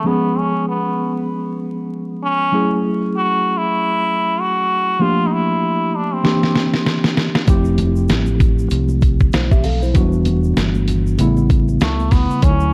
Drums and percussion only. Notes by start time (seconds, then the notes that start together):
6.25 snare
6.43 snare
6.55 snare
6.74 snare
6.86 snare
7.04 snare
7.17 snare
7.35 snare
7.48 kick, closed hi-hat, shaker
7.65 shaker
7.78 closed hi-hat, high conga, low conga, shaker
7.96 shaker
8.09 snare, closed hi-hat, high conga, shaker
8.26 high conga, shaker
8.40 kick, closed hi-hat, low conga, shaker
8.59 shaker
8.71 closed hi-hat, shaker
8.89 high conga, shaker
9.02 kick, closed hi-hat, shaker
9.20 kick, high conga, shaker
9.32 snare, closed hi-hat, shaker
9.51 kick, shaker
9.64 open hi-hat, low conga, shaker
9.82 shaker
9.95 kick, closed hi-hat, shaker
10.13 shaker
10.25 closed hi-hat, high conga, low conga, shaker
10.44 shaker
10.57 snare, closed hi-hat, high conga, shaker
10.75 high conga, shaker
10.88 closed hi-hat, low conga, shaker
11.07 shaker
11.19 closed hi-hat, shaker
11.37 high conga, shaker
11.50 kick, closed hi-hat, shaker
11.68 high conga, shaker
11.80 snare, closed hi-hat, shaker
11.99 shaker
12.11 kick, snare, open hi-hat, low conga, shaker
12.30 shaker
12.42 kick, closed hi-hat, shaker
12.60 shaker